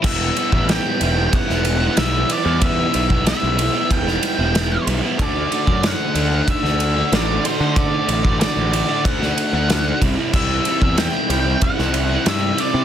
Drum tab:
CC |x---------------|----------------|----------------|----------------|
RD |--x-x-x-x-x-x-x-|x-x-x-x-x-x-x-x-|x-x-x-x-x-x-x-x-|x-x-x-x-x-x-x-x-|
SD |----o----o--o---|----o----o--o---|----o----o--o---|----o----o--o---|
BD |o--o----o-------|o--o----o-------|o--o----o-------|o--o----o-----o-|

CC |x---------------|
RD |--x-x-x-x-x-x-x-|
SD |----o----o--o---|
BD |o--o----o-------|